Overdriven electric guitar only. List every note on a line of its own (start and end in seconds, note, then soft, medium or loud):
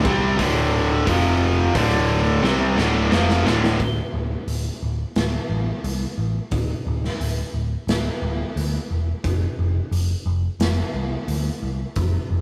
0.05 0.38 C3 loud
0.05 0.38 G3 loud
0.05 0.39 C4 loud
0.38 1.05 D2 medium
0.38 1.06 A2 medium
0.38 1.06 D3 loud
1.06 1.74 F2 medium
1.06 1.74 C3 loud
1.06 1.74 F3 loud
1.74 2.41 D2 medium
1.74 2.42 A2 medium
1.74 2.42 D3 loud
2.43 2.76 C3 medium
2.43 2.76 G3 medium
2.43 2.77 C4 medium
2.76 3.09 D2 medium
2.76 3.10 A2 loud
2.76 3.10 D3 loud
3.10 3.43 F2 medium
3.10 3.44 C3 medium
3.10 3.44 F3 loud
3.44 3.78 D2 medium
3.44 3.78 A2 medium
3.44 3.78 D3 loud